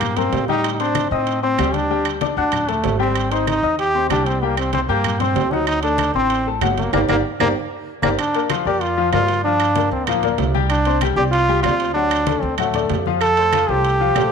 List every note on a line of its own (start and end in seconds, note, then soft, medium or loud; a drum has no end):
0.00 0.29 G2 medium
0.00 0.19 A#3 medium
0.00 0.12 G4 medium
0.00 0.12 G5 medium
0.00 0.12 G6 medium
0.00 high conga soft
0.00 low conga medium
0.00 high timbale loud
0.00 claves medium
0.17 0.43 A#3 medium
0.17 0.48 C4 medium
0.17 0.43 A#4 medium
0.17 0.43 A#5 medium
0.17 high conga soft
0.17 low conga medium
0.17 high timbale medium
0.33 1.06 A2 medium
0.33 high conga medium
0.33 high timbale medium
0.33 low timbale medium
0.48 0.75 G3 medium
0.48 0.72 D#4 loud
0.48 0.75 G4 medium
0.48 0.75 G5 medium
0.48 high conga medium
0.64 high conga soft
0.64 high timbale medium
0.64 claves medium
0.72 0.82 D#4 medium
0.80 1.06 C4 medium
0.80 1.11 D4 medium
0.80 1.06 C5 medium
0.80 1.06 C6 medium
0.80 high conga soft
0.80 high timbale medium
0.95 high conga medium
0.95 high timbale medium
0.95 low timbale medium
0.95 claves medium
1.11 1.55 A2 medium
1.11 1.41 C4 medium
1.11 1.37 D#4 medium
1.11 1.37 D#5 medium
1.11 1.38 D#6 medium
1.27 high conga soft
1.27 high timbale medium
1.43 1.56 C4 medium
1.43 1.76 C4 loud
1.43 1.56 C5 medium
1.43 1.56 C6 medium
1.43 high conga soft
1.58 2.32 D2 medium
1.58 1.85 G3 medium
1.58 1.85 G4 medium
1.58 1.85 G5 medium
1.58 high conga medium
1.58 high timbale medium
1.58 low timbale medium
1.58 claves medium
1.74 2.10 D4 loud
1.74 high conga medium
1.74 high timbale medium
1.90 2.16 G3 medium
1.90 2.16 G4 medium
1.90 2.16 G5 medium
1.90 high conga soft
2.05 high conga soft
2.05 high timbale medium
2.05 claves medium
2.21 2.34 D4 medium
2.21 2.34 D5 medium
2.21 2.35 D6 medium
2.21 high conga medium
2.21 high timbale medium
2.21 low timbale medium
2.37 2.81 D2 medium
2.37 2.71 D4 medium
2.37 2.63 F#4 medium
2.37 2.63 F#5 medium
2.37 2.63 F#6 medium
2.37 high conga soft
2.52 high conga soft
2.52 low conga medium
2.52 high timbale medium
2.52 claves medium
2.68 2.94 A3 medium
2.68 3.00 A3 medium
2.68 2.94 A4 medium
2.68 2.95 A5 medium
2.68 high conga soft
2.68 low conga medium
2.68 high timbale medium
2.84 3.57 G#1 medium
2.84 high conga medium
2.84 high timbale medium
2.84 low timbale medium
2.99 3.25 G3 medium
2.99 3.33 C4 medium
2.99 3.26 G4 medium
2.99 3.26 G5 medium
3.15 high conga soft
3.15 high timbale medium
3.15 claves medium
3.31 3.57 C4 medium
3.31 3.47 D#4 medium
3.31 3.57 C5 medium
3.31 3.58 C6 medium
3.31 high conga soft
3.31 high timbale medium
3.47 3.77 D#4 loud
3.47 high conga medium
3.47 high timbale medium
3.47 low timbale medium
3.47 claves medium
3.63 4.07 D#2 medium
3.63 3.89 D#4 medium
3.63 3.89 D#5 medium
3.63 3.89 D#6 medium
3.79 4.08 G4 loud
3.79 high conga soft
3.79 high timbale medium
3.95 4.08 C4 medium
3.95 4.08 C5 medium
3.95 4.08 C6 medium
3.95 high conga soft
4.10 4.83 C2 medium
4.10 4.37 G3 medium
4.10 4.28 D4 medium
4.10 4.37 G4 medium
4.10 4.37 G5 medium
4.10 high conga medium
4.10 high timbale medium
4.10 low timbale medium
4.10 claves medium
4.26 4.45 C4 medium
4.26 high timbale medium
4.42 4.68 G3 medium
4.42 4.58 A#3 loud
4.42 4.68 G4 medium
4.42 4.68 G5 medium
4.42 high conga soft
4.57 4.73 C4 medium
4.57 high conga soft
4.57 high timbale medium
4.57 claves medium
4.73 4.86 C4 medium
4.73 4.81 C4 medium
4.73 4.86 C5 medium
4.73 4.87 C6 medium
4.73 high conga medium
4.73 high timbale medium
4.73 low timbale medium
4.89 5.33 G2 medium
4.89 5.21 A#3 loud
4.89 5.15 G4 medium
4.89 5.15 G5 medium
4.89 5.15 G6 medium
4.89 high conga soft
5.04 high conga soft
5.04 low conga medium
5.04 high timbale loud
5.04 claves medium
5.20 5.53 C4 loud
5.20 5.46 C4 medium
5.20 5.46 C5 medium
5.20 5.47 C6 medium
5.20 high conga soft
5.20 low conga medium
5.20 high timbale medium
5.35 6.09 D2 medium
5.35 high conga medium
5.35 high timbale medium
5.35 low timbale medium
5.51 5.78 F#3 medium
5.51 5.67 D#4 medium
5.51 5.78 F#4 medium
5.51 5.78 F#5 medium
5.51 high conga medium
5.67 5.82 D#4 loud
5.67 high conga soft
5.67 high timbale medium
5.67 claves medium
5.82 6.09 A3 medium
5.82 6.12 D4 loud
5.82 6.09 A4 medium
5.82 6.10 A5 medium
5.82 high conga soft
5.82 high timbale medium
5.98 high conga medium
5.98 high timbale medium
5.98 low timbale medium
5.98 claves medium
6.14 6.58 A1 medium
6.14 6.48 C4 loud
6.14 6.41 C4 medium
6.14 6.41 C5 medium
6.14 6.41 C6 medium
6.30 high conga soft
6.30 high timbale medium
6.46 6.60 A3 medium
6.46 6.60 A4 medium
6.46 6.60 A5 medium
6.46 high conga soft
6.61 6.91 G1 medium
6.61 6.88 F#3 medium
6.61 6.88 F#4 medium
6.61 6.88 F#5 medium
6.61 high conga medium
6.61 high timbale medium
6.61 low timbale medium
6.61 claves medium
6.77 6.92 A#3 medium
6.77 high conga medium
6.77 high timbale medium
6.93 7.05 G1 medium
6.93 7.01 A#3 medium
6.93 7.04 G4 medium
6.93 7.03 A#4 medium
6.93 7.03 D5 medium
6.93 high conga medium
6.93 high timbale loud
6.93 claves medium
7.08 7.20 G1 medium
7.08 7.17 A#3 medium
7.08 7.19 G4 loud
7.08 7.19 A#4 medium
7.08 7.19 D5 medium
7.08 high conga medium
7.08 high timbale loud
7.08 claves medium
7.40 7.52 G1 loud
7.40 7.48 A#3 loud
7.40 7.51 G4 loud
7.40 7.51 A#4 loud
7.40 7.50 D5 loud
7.40 high conga medium
7.40 high timbale medium
7.40 claves medium
8.03 8.15 G1 medium
8.03 8.10 A#3 medium
8.03 8.14 G4 medium
8.03 8.13 A#4 medium
8.03 8.13 D5 medium
8.03 high conga medium
8.03 high timbale medium
8.03 claves loud
8.19 8.48 D4 loud
8.19 high conga soft
8.19 high timbale loud
8.19 claves medium
8.34 8.48 A#3 medium
8.34 8.48 A#4 medium
8.34 8.48 D5 medium
8.34 high conga soft
8.34 high timbale medium
8.50 8.63 F3 medium
8.50 8.63 F4 medium
8.50 8.64 F5 medium
8.50 high conga medium
8.50 high timbale loud
8.50 low timbale medium
8.50 claves medium
8.65 9.10 F2 medium
8.65 8.92 A#3 medium
8.65 8.83 G4 loud
8.65 8.92 A#4 medium
8.65 8.92 D5 medium
8.81 9.12 F4 loud
8.81 high conga soft
8.81 high timbale medium
8.97 9.10 F3 medium
8.97 9.11 F4 medium
8.97 9.11 F5 medium
8.97 high conga soft
9.13 9.86 G2 medium
9.13 9.39 A#3 medium
9.13 9.42 F4 loud
9.13 9.39 A#4 medium
9.13 9.40 D5 medium
9.13 high conga medium
9.13 high timbale medium
9.13 low timbale medium
9.13 claves medium
9.28 high timbale medium
9.44 9.71 F3 medium
9.44 9.88 D4 loud
9.44 9.71 F4 medium
9.44 9.71 F5 medium
9.44 high conga soft
9.60 high conga soft
9.60 high timbale medium
9.60 claves medium
9.76 10.02 A#3 medium
9.76 10.02 A#4 medium
9.76 10.03 D5 medium
9.76 high conga loud
9.76 high timbale medium
9.76 low timbale medium
9.91 10.35 D2 medium
9.91 10.09 C4 medium
9.91 high conga soft
10.07 10.21 F3 medium
10.07 10.39 A#3 medium
10.07 10.21 F4 medium
10.07 10.21 F5 medium
10.07 high conga soft
10.07 low conga medium
10.07 high timbale loud
10.07 claves medium
10.23 10.49 A#3 medium
10.23 10.49 A#4 medium
10.23 10.50 D5 medium
10.23 high conga soft
10.23 low conga medium
10.23 high timbale medium
10.38 11.12 C2 loud
10.38 high conga medium
10.38 high timbale medium
10.38 low timbale medium
10.54 10.80 G3 medium
10.54 10.80 G4 medium
10.54 10.81 G5 medium
10.54 high conga medium
10.70 11.00 D4 loud
10.70 high conga soft
10.70 high timbale medium
10.70 claves medium
10.85 10.99 C4 medium
10.85 10.99 C5 medium
10.85 10.99 D5 medium
10.85 high conga soft
10.85 high timbale medium
11.01 11.15 G3 medium
11.01 11.15 G4 medium
11.01 11.15 G5 medium
11.01 high conga medium
11.01 high timbale medium
11.01 low timbale medium
11.01 claves medium
11.16 11.61 C2 medium
11.16 11.43 C4 medium
11.16 11.24 G4 loud
11.16 11.43 C5 medium
11.16 11.43 D5 medium
11.32 11.62 F4 loud
11.32 high conga soft
11.32 high timbale medium
11.48 11.62 G3 medium
11.48 11.62 G4 medium
11.48 11.62 G5 medium
11.48 high conga soft
11.63 12.37 D2 medium
11.63 11.90 C4 medium
11.63 11.93 F4 loud
11.63 11.90 C5 medium
11.63 11.90 D5 medium
11.63 high conga medium
11.63 high timbale medium
11.63 low timbale medium
11.63 claves medium
11.80 high timbale medium
11.94 12.21 F#3 medium
11.94 12.44 D4 loud
11.94 12.22 F#4 medium
11.94 12.22 F#5 medium
11.94 high conga soft
12.11 high conga soft
12.11 high timbale medium
12.11 claves medium
12.27 12.53 A3 medium
12.27 12.53 A4 medium
12.27 12.53 D5 medium
12.27 high conga loud
12.27 high timbale medium
12.27 low timbale medium
12.42 12.87 D2 medium
12.42 12.58 C4 medium
12.42 high conga soft
12.58 12.72 F#3 medium
12.58 12.88 A3 medium
12.58 12.72 F#4 medium
12.58 12.72 F#5 medium
12.58 high conga soft
12.58 low conga medium
12.58 high timbale medium
12.58 claves medium
12.74 13.01 A3 medium
12.74 13.01 A4 medium
12.74 13.01 D5 medium
12.74 high conga soft
12.74 low conga medium
12.74 high timbale medium
12.89 13.63 F2 medium
12.89 high conga medium
12.89 high timbale medium
12.89 low timbale medium
13.06 13.32 F3 medium
13.06 13.32 F4 medium
13.06 13.32 F5 medium
13.06 high conga medium
13.21 13.71 A4 loud
13.21 high conga soft
13.21 high timbale medium
13.21 claves medium
13.37 13.51 A3 medium
13.37 13.51 A4 medium
13.37 13.51 C5 medium
13.37 high conga soft
13.37 high timbale medium
13.53 13.66 F3 medium
13.53 13.66 F4 medium
13.53 13.67 F5 medium
13.53 high conga loud
13.53 high timbale loud
13.53 low timbale medium
13.53 claves medium
13.68 14.12 C2 medium
13.68 13.95 A3 medium
13.68 14.32 G4 loud
13.68 13.95 A4 medium
13.68 13.95 C5 medium
13.84 high conga soft
13.84 high timbale medium
14.00 14.13 F3 medium
14.00 14.13 F4 medium
14.00 14.14 F5 medium
14.00 high conga soft
14.16 14.32 A#1 medium
14.16 14.32 A3 medium
14.16 14.32 A4 medium
14.16 14.32 C5 medium
14.16 high conga medium
14.16 high timbale medium
14.16 low timbale medium
14.16 claves medium